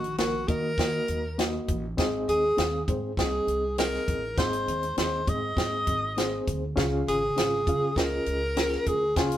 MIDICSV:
0, 0, Header, 1, 5, 480
1, 0, Start_track
1, 0, Tempo, 598802
1, 1587, Time_signature, 4, 2, 24, 8
1, 7514, End_track
2, 0, Start_track
2, 0, Title_t, "Tenor saxophone"
2, 0, Program_c, 0, 66
2, 0, Note_on_c, 0, 66, 97
2, 143, Note_off_c, 0, 66, 0
2, 147, Note_on_c, 0, 66, 94
2, 385, Note_on_c, 0, 70, 111
2, 397, Note_off_c, 0, 66, 0
2, 1346, Note_off_c, 0, 70, 0
2, 1837, Note_on_c, 0, 68, 105
2, 2280, Note_off_c, 0, 68, 0
2, 2562, Note_on_c, 0, 68, 83
2, 3003, Note_off_c, 0, 68, 0
2, 3036, Note_on_c, 0, 70, 89
2, 3480, Note_off_c, 0, 70, 0
2, 3515, Note_on_c, 0, 72, 100
2, 3959, Note_off_c, 0, 72, 0
2, 4000, Note_on_c, 0, 72, 94
2, 4238, Note_on_c, 0, 75, 101
2, 4250, Note_off_c, 0, 72, 0
2, 5193, Note_off_c, 0, 75, 0
2, 5678, Note_on_c, 0, 68, 98
2, 6389, Note_on_c, 0, 70, 103
2, 6401, Note_off_c, 0, 68, 0
2, 7114, Note_on_c, 0, 68, 94
2, 7126, Note_off_c, 0, 70, 0
2, 7350, Note_off_c, 0, 68, 0
2, 7355, Note_on_c, 0, 65, 82
2, 7514, Note_off_c, 0, 65, 0
2, 7514, End_track
3, 0, Start_track
3, 0, Title_t, "Reed electric piano"
3, 0, Program_c, 1, 4
3, 0, Note_on_c, 1, 51, 67
3, 147, Note_on_c, 1, 58, 69
3, 149, Note_on_c, 1, 63, 65
3, 155, Note_on_c, 1, 66, 59
3, 156, Note_on_c, 1, 70, 81
3, 330, Note_off_c, 1, 58, 0
3, 331, Note_off_c, 1, 63, 0
3, 334, Note_off_c, 1, 66, 0
3, 335, Note_off_c, 1, 70, 0
3, 354, Note_off_c, 1, 51, 0
3, 386, Note_on_c, 1, 58, 67
3, 389, Note_on_c, 1, 63, 56
3, 393, Note_on_c, 1, 66, 58
3, 398, Note_on_c, 1, 75, 73
3, 569, Note_off_c, 1, 58, 0
3, 571, Note_off_c, 1, 63, 0
3, 573, Note_off_c, 1, 66, 0
3, 576, Note_off_c, 1, 75, 0
3, 631, Note_on_c, 1, 58, 68
3, 635, Note_on_c, 1, 63, 66
3, 637, Note_on_c, 1, 66, 69
3, 644, Note_on_c, 1, 75, 79
3, 996, Note_off_c, 1, 58, 0
3, 998, Note_off_c, 1, 63, 0
3, 999, Note_off_c, 1, 66, 0
3, 1003, Note_off_c, 1, 75, 0
3, 1107, Note_on_c, 1, 58, 87
3, 1112, Note_on_c, 1, 63, 80
3, 1117, Note_on_c, 1, 66, 79
3, 1120, Note_on_c, 1, 75, 97
3, 1474, Note_off_c, 1, 58, 0
3, 1477, Note_off_c, 1, 63, 0
3, 1479, Note_off_c, 1, 66, 0
3, 1481, Note_off_c, 1, 75, 0
3, 1582, Note_on_c, 1, 60, 116
3, 1587, Note_on_c, 1, 63, 111
3, 1588, Note_on_c, 1, 44, 77
3, 1595, Note_on_c, 1, 68, 105
3, 1598, Note_on_c, 1, 75, 127
3, 1952, Note_off_c, 1, 60, 0
3, 1955, Note_off_c, 1, 63, 0
3, 1958, Note_off_c, 1, 68, 0
3, 1960, Note_off_c, 1, 75, 0
3, 2059, Note_on_c, 1, 60, 71
3, 2065, Note_on_c, 1, 63, 69
3, 2069, Note_on_c, 1, 68, 66
3, 2073, Note_on_c, 1, 77, 71
3, 2247, Note_off_c, 1, 60, 0
3, 2250, Note_off_c, 1, 63, 0
3, 2252, Note_off_c, 1, 68, 0
3, 2254, Note_off_c, 1, 77, 0
3, 2276, Note_off_c, 1, 44, 0
3, 2309, Note_on_c, 1, 60, 65
3, 2312, Note_on_c, 1, 63, 59
3, 2314, Note_on_c, 1, 68, 57
3, 2320, Note_on_c, 1, 72, 73
3, 2492, Note_off_c, 1, 60, 0
3, 2493, Note_off_c, 1, 63, 0
3, 2495, Note_off_c, 1, 68, 0
3, 2497, Note_off_c, 1, 72, 0
3, 2547, Note_on_c, 1, 60, 69
3, 2549, Note_on_c, 1, 63, 68
3, 2556, Note_on_c, 1, 68, 69
3, 2561, Note_on_c, 1, 75, 76
3, 2914, Note_off_c, 1, 60, 0
3, 2916, Note_off_c, 1, 63, 0
3, 2919, Note_off_c, 1, 68, 0
3, 2922, Note_off_c, 1, 75, 0
3, 3029, Note_on_c, 1, 60, 72
3, 3032, Note_on_c, 1, 63, 64
3, 3037, Note_on_c, 1, 68, 66
3, 3042, Note_on_c, 1, 75, 81
3, 3396, Note_off_c, 1, 60, 0
3, 3397, Note_off_c, 1, 63, 0
3, 3400, Note_off_c, 1, 68, 0
3, 3402, Note_off_c, 1, 75, 0
3, 3509, Note_on_c, 1, 60, 96
3, 3515, Note_on_c, 1, 63, 84
3, 3516, Note_on_c, 1, 44, 63
3, 3520, Note_on_c, 1, 68, 84
3, 3522, Note_on_c, 1, 75, 96
3, 3876, Note_off_c, 1, 60, 0
3, 3879, Note_off_c, 1, 63, 0
3, 3881, Note_off_c, 1, 68, 0
3, 3882, Note_off_c, 1, 75, 0
3, 3983, Note_on_c, 1, 60, 67
3, 3990, Note_on_c, 1, 63, 64
3, 3992, Note_on_c, 1, 68, 63
3, 3995, Note_on_c, 1, 75, 76
3, 4169, Note_off_c, 1, 60, 0
3, 4173, Note_off_c, 1, 63, 0
3, 4174, Note_off_c, 1, 68, 0
3, 4175, Note_off_c, 1, 75, 0
3, 4200, Note_off_c, 1, 44, 0
3, 4227, Note_on_c, 1, 60, 66
3, 4232, Note_on_c, 1, 63, 62
3, 4236, Note_on_c, 1, 68, 59
3, 4240, Note_on_c, 1, 75, 69
3, 4411, Note_off_c, 1, 60, 0
3, 4414, Note_off_c, 1, 63, 0
3, 4416, Note_off_c, 1, 68, 0
3, 4418, Note_off_c, 1, 75, 0
3, 4463, Note_on_c, 1, 60, 66
3, 4467, Note_on_c, 1, 63, 63
3, 4474, Note_on_c, 1, 68, 62
3, 4478, Note_on_c, 1, 75, 75
3, 4833, Note_off_c, 1, 60, 0
3, 4835, Note_off_c, 1, 63, 0
3, 4838, Note_off_c, 1, 68, 0
3, 4840, Note_off_c, 1, 75, 0
3, 4944, Note_on_c, 1, 60, 88
3, 4949, Note_on_c, 1, 63, 75
3, 4952, Note_on_c, 1, 68, 78
3, 4957, Note_on_c, 1, 72, 90
3, 5313, Note_off_c, 1, 60, 0
3, 5315, Note_off_c, 1, 63, 0
3, 5317, Note_off_c, 1, 68, 0
3, 5319, Note_off_c, 1, 72, 0
3, 5417, Note_on_c, 1, 61, 115
3, 5420, Note_on_c, 1, 65, 99
3, 5423, Note_on_c, 1, 49, 75
3, 5426, Note_on_c, 1, 68, 109
3, 5431, Note_on_c, 1, 77, 124
3, 5789, Note_off_c, 1, 61, 0
3, 5791, Note_off_c, 1, 65, 0
3, 5794, Note_off_c, 1, 68, 0
3, 5796, Note_off_c, 1, 77, 0
3, 5903, Note_on_c, 1, 61, 69
3, 5909, Note_on_c, 1, 65, 69
3, 5911, Note_on_c, 1, 68, 66
3, 5917, Note_on_c, 1, 77, 79
3, 6089, Note_off_c, 1, 61, 0
3, 6091, Note_off_c, 1, 65, 0
3, 6092, Note_off_c, 1, 68, 0
3, 6095, Note_off_c, 1, 77, 0
3, 6113, Note_off_c, 1, 49, 0
3, 6150, Note_on_c, 1, 61, 62
3, 6154, Note_on_c, 1, 65, 61
3, 6158, Note_on_c, 1, 68, 56
3, 6164, Note_on_c, 1, 77, 71
3, 6332, Note_off_c, 1, 61, 0
3, 6334, Note_off_c, 1, 65, 0
3, 6336, Note_off_c, 1, 68, 0
3, 6339, Note_off_c, 1, 77, 0
3, 6388, Note_on_c, 1, 61, 74
3, 6392, Note_on_c, 1, 65, 66
3, 6398, Note_on_c, 1, 68, 65
3, 6403, Note_on_c, 1, 75, 78
3, 6754, Note_off_c, 1, 61, 0
3, 6756, Note_off_c, 1, 65, 0
3, 6759, Note_off_c, 1, 68, 0
3, 6762, Note_off_c, 1, 75, 0
3, 6866, Note_on_c, 1, 61, 72
3, 6867, Note_on_c, 1, 65, 65
3, 6871, Note_on_c, 1, 68, 69
3, 6876, Note_on_c, 1, 70, 81
3, 7233, Note_off_c, 1, 61, 0
3, 7233, Note_off_c, 1, 65, 0
3, 7235, Note_off_c, 1, 68, 0
3, 7237, Note_off_c, 1, 70, 0
3, 7343, Note_on_c, 1, 61, 95
3, 7345, Note_on_c, 1, 65, 92
3, 7349, Note_on_c, 1, 49, 63
3, 7351, Note_on_c, 1, 68, 90
3, 7355, Note_on_c, 1, 80, 105
3, 7514, Note_off_c, 1, 49, 0
3, 7514, Note_off_c, 1, 61, 0
3, 7514, Note_off_c, 1, 65, 0
3, 7514, Note_off_c, 1, 68, 0
3, 7514, Note_off_c, 1, 80, 0
3, 7514, End_track
4, 0, Start_track
4, 0, Title_t, "Upright bass"
4, 0, Program_c, 2, 32
4, 0, Note_on_c, 2, 34, 73
4, 101, Note_off_c, 2, 34, 0
4, 143, Note_on_c, 2, 34, 82
4, 340, Note_off_c, 2, 34, 0
4, 389, Note_on_c, 2, 51, 84
4, 779, Note_off_c, 2, 51, 0
4, 870, Note_on_c, 2, 39, 89
4, 1260, Note_off_c, 2, 39, 0
4, 1352, Note_on_c, 2, 33, 97
4, 1545, Note_off_c, 2, 33, 0
4, 1588, Note_on_c, 2, 32, 84
4, 1783, Note_off_c, 2, 32, 0
4, 1826, Note_on_c, 2, 39, 81
4, 2022, Note_off_c, 2, 39, 0
4, 2067, Note_on_c, 2, 39, 89
4, 2262, Note_off_c, 2, 39, 0
4, 2308, Note_on_c, 2, 44, 93
4, 2503, Note_off_c, 2, 44, 0
4, 2543, Note_on_c, 2, 36, 78
4, 2741, Note_off_c, 2, 36, 0
4, 2782, Note_on_c, 2, 36, 80
4, 3175, Note_off_c, 2, 36, 0
4, 3270, Note_on_c, 2, 33, 97
4, 3465, Note_off_c, 2, 33, 0
4, 3508, Note_on_c, 2, 32, 86
4, 3704, Note_off_c, 2, 32, 0
4, 3746, Note_on_c, 2, 39, 84
4, 3943, Note_off_c, 2, 39, 0
4, 3987, Note_on_c, 2, 39, 87
4, 4183, Note_off_c, 2, 39, 0
4, 4226, Note_on_c, 2, 44, 87
4, 4423, Note_off_c, 2, 44, 0
4, 4461, Note_on_c, 2, 44, 81
4, 4660, Note_off_c, 2, 44, 0
4, 4707, Note_on_c, 2, 32, 92
4, 5098, Note_off_c, 2, 32, 0
4, 5191, Note_on_c, 2, 38, 89
4, 5385, Note_off_c, 2, 38, 0
4, 5427, Note_on_c, 2, 37, 90
4, 5623, Note_off_c, 2, 37, 0
4, 5667, Note_on_c, 2, 32, 82
4, 5863, Note_off_c, 2, 32, 0
4, 5907, Note_on_c, 2, 32, 91
4, 6149, Note_on_c, 2, 49, 84
4, 6161, Note_off_c, 2, 32, 0
4, 6344, Note_off_c, 2, 49, 0
4, 6383, Note_on_c, 2, 37, 85
4, 6580, Note_off_c, 2, 37, 0
4, 6624, Note_on_c, 2, 37, 81
4, 7015, Note_off_c, 2, 37, 0
4, 7109, Note_on_c, 2, 38, 84
4, 7303, Note_off_c, 2, 38, 0
4, 7514, End_track
5, 0, Start_track
5, 0, Title_t, "Drums"
5, 32, Note_on_c, 9, 42, 47
5, 112, Note_off_c, 9, 42, 0
5, 147, Note_on_c, 9, 42, 85
5, 151, Note_on_c, 9, 38, 124
5, 227, Note_off_c, 9, 42, 0
5, 231, Note_off_c, 9, 38, 0
5, 386, Note_on_c, 9, 42, 72
5, 388, Note_on_c, 9, 36, 101
5, 467, Note_off_c, 9, 42, 0
5, 468, Note_off_c, 9, 36, 0
5, 624, Note_on_c, 9, 36, 90
5, 634, Note_on_c, 9, 42, 76
5, 636, Note_on_c, 9, 38, 100
5, 704, Note_off_c, 9, 36, 0
5, 714, Note_off_c, 9, 42, 0
5, 716, Note_off_c, 9, 38, 0
5, 866, Note_on_c, 9, 42, 70
5, 946, Note_off_c, 9, 42, 0
5, 1112, Note_on_c, 9, 42, 86
5, 1117, Note_on_c, 9, 38, 111
5, 1192, Note_off_c, 9, 42, 0
5, 1197, Note_off_c, 9, 38, 0
5, 1349, Note_on_c, 9, 42, 69
5, 1350, Note_on_c, 9, 36, 81
5, 1430, Note_off_c, 9, 42, 0
5, 1431, Note_off_c, 9, 36, 0
5, 1588, Note_on_c, 9, 36, 96
5, 1588, Note_on_c, 9, 42, 77
5, 1594, Note_on_c, 9, 38, 100
5, 1668, Note_off_c, 9, 36, 0
5, 1668, Note_off_c, 9, 42, 0
5, 1674, Note_off_c, 9, 38, 0
5, 1834, Note_on_c, 9, 42, 75
5, 1914, Note_off_c, 9, 42, 0
5, 2069, Note_on_c, 9, 42, 87
5, 2073, Note_on_c, 9, 38, 116
5, 2149, Note_off_c, 9, 42, 0
5, 2153, Note_off_c, 9, 38, 0
5, 2308, Note_on_c, 9, 36, 91
5, 2309, Note_on_c, 9, 42, 78
5, 2388, Note_off_c, 9, 36, 0
5, 2389, Note_off_c, 9, 42, 0
5, 2544, Note_on_c, 9, 36, 88
5, 2554, Note_on_c, 9, 42, 72
5, 2556, Note_on_c, 9, 38, 105
5, 2624, Note_off_c, 9, 36, 0
5, 2634, Note_off_c, 9, 42, 0
5, 2636, Note_off_c, 9, 38, 0
5, 2791, Note_on_c, 9, 42, 64
5, 2871, Note_off_c, 9, 42, 0
5, 3031, Note_on_c, 9, 42, 84
5, 3036, Note_on_c, 9, 38, 109
5, 3111, Note_off_c, 9, 42, 0
5, 3116, Note_off_c, 9, 38, 0
5, 3156, Note_on_c, 9, 38, 33
5, 3236, Note_off_c, 9, 38, 0
5, 3270, Note_on_c, 9, 36, 83
5, 3271, Note_on_c, 9, 42, 69
5, 3350, Note_off_c, 9, 36, 0
5, 3351, Note_off_c, 9, 42, 0
5, 3507, Note_on_c, 9, 36, 101
5, 3507, Note_on_c, 9, 42, 81
5, 3513, Note_on_c, 9, 38, 98
5, 3587, Note_off_c, 9, 36, 0
5, 3587, Note_off_c, 9, 42, 0
5, 3593, Note_off_c, 9, 38, 0
5, 3631, Note_on_c, 9, 42, 59
5, 3711, Note_off_c, 9, 42, 0
5, 3753, Note_on_c, 9, 42, 72
5, 3833, Note_off_c, 9, 42, 0
5, 3870, Note_on_c, 9, 42, 49
5, 3950, Note_off_c, 9, 42, 0
5, 3988, Note_on_c, 9, 42, 86
5, 3992, Note_on_c, 9, 38, 114
5, 4068, Note_off_c, 9, 42, 0
5, 4072, Note_off_c, 9, 38, 0
5, 4228, Note_on_c, 9, 36, 90
5, 4229, Note_on_c, 9, 42, 77
5, 4308, Note_off_c, 9, 36, 0
5, 4309, Note_off_c, 9, 42, 0
5, 4463, Note_on_c, 9, 36, 87
5, 4473, Note_on_c, 9, 42, 79
5, 4475, Note_on_c, 9, 38, 104
5, 4543, Note_off_c, 9, 36, 0
5, 4553, Note_off_c, 9, 42, 0
5, 4555, Note_off_c, 9, 38, 0
5, 4705, Note_on_c, 9, 42, 67
5, 4707, Note_on_c, 9, 36, 80
5, 4785, Note_off_c, 9, 42, 0
5, 4787, Note_off_c, 9, 36, 0
5, 4951, Note_on_c, 9, 42, 85
5, 4956, Note_on_c, 9, 38, 114
5, 5031, Note_off_c, 9, 42, 0
5, 5036, Note_off_c, 9, 38, 0
5, 5190, Note_on_c, 9, 36, 88
5, 5190, Note_on_c, 9, 42, 67
5, 5270, Note_off_c, 9, 36, 0
5, 5270, Note_off_c, 9, 42, 0
5, 5428, Note_on_c, 9, 36, 100
5, 5429, Note_on_c, 9, 42, 77
5, 5435, Note_on_c, 9, 38, 102
5, 5508, Note_off_c, 9, 36, 0
5, 5509, Note_off_c, 9, 42, 0
5, 5515, Note_off_c, 9, 38, 0
5, 5677, Note_on_c, 9, 42, 81
5, 5757, Note_off_c, 9, 42, 0
5, 5912, Note_on_c, 9, 42, 90
5, 5916, Note_on_c, 9, 38, 121
5, 5992, Note_off_c, 9, 42, 0
5, 5996, Note_off_c, 9, 38, 0
5, 6149, Note_on_c, 9, 36, 100
5, 6150, Note_on_c, 9, 42, 76
5, 6229, Note_off_c, 9, 36, 0
5, 6230, Note_off_c, 9, 42, 0
5, 6383, Note_on_c, 9, 36, 84
5, 6392, Note_on_c, 9, 42, 71
5, 6394, Note_on_c, 9, 38, 102
5, 6463, Note_off_c, 9, 36, 0
5, 6472, Note_off_c, 9, 42, 0
5, 6474, Note_off_c, 9, 38, 0
5, 6623, Note_on_c, 9, 42, 70
5, 6703, Note_off_c, 9, 42, 0
5, 6867, Note_on_c, 9, 42, 85
5, 6872, Note_on_c, 9, 38, 120
5, 6947, Note_off_c, 9, 42, 0
5, 6952, Note_off_c, 9, 38, 0
5, 6991, Note_on_c, 9, 38, 33
5, 7071, Note_off_c, 9, 38, 0
5, 7105, Note_on_c, 9, 42, 68
5, 7108, Note_on_c, 9, 36, 85
5, 7186, Note_off_c, 9, 42, 0
5, 7188, Note_off_c, 9, 36, 0
5, 7345, Note_on_c, 9, 42, 77
5, 7346, Note_on_c, 9, 36, 103
5, 7351, Note_on_c, 9, 38, 102
5, 7425, Note_off_c, 9, 42, 0
5, 7426, Note_off_c, 9, 36, 0
5, 7431, Note_off_c, 9, 38, 0
5, 7468, Note_on_c, 9, 42, 64
5, 7514, Note_off_c, 9, 42, 0
5, 7514, End_track
0, 0, End_of_file